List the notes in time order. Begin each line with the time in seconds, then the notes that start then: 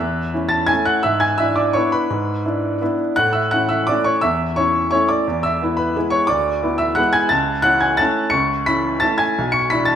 Already playing: E5 E6
0.00 E2
0.34 C#4 E4
0.49 A5 A6
0.67 A3 C#4 E4 G#5 G#6
0.85 F#5 F#6
1.03 G#2 E5 E6
1.20 G#5 G#6
1.38 D4 E4 E5 E6
1.56 D5 D6
1.73 B3 D4 E4 C#5 C#6
1.92 B4 B5
2.10 G#2
2.46 D4 E4
2.81 B3 D4 E4
3.16 A2 F#5 F#6
3.33 E5 E6
3.51 C#4 E4 F#5 F#6
3.69 E5 E6
3.87 A3 C#4 E4 D5 D6
4.04 C#5 C#6
4.21 E2 E5 E6
4.56 C#4 E4 C#5 C#6
4.91 A3 C#4 E4 C#5 C#6
5.09 D5 D6
5.27 E2
5.43 E5 E6
5.62 B3 E4
5.77 B4 B5
5.96 G#3 B3 E4
6.10 C#5 C#6
6.27 D2 D5 D6
6.63 B3 E4
6.78 E5 E6
6.95 G#3 B3 E4 F#5 F#6
7.13 G#5 G#6
7.29 C#2 A5 A6
7.62 C#4 E4 F#5 F#6
7.80 G#5 G#6
7.97 A3 C#4 E4 A5 A6
8.30 C#2 C#6 C#7
8.66 C#4 E4 B5 B6
9.00 A3 C#4 E4 A5 A6
9.18 G#5 G#6
9.38 B1
9.52 C#6 C#7
9.70 D4 E4 B5 B6
9.85 A5 A6